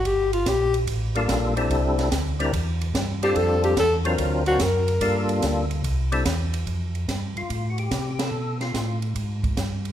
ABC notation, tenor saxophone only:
X:1
M:4/4
L:1/8
Q:"Swing" 1/4=145
K:F
V:1 name="Tenor saxophone"
G F G z4 z | z6 z G | A G A z2 ^F ^A2- | ^A z6 z |
z8 | z8 |]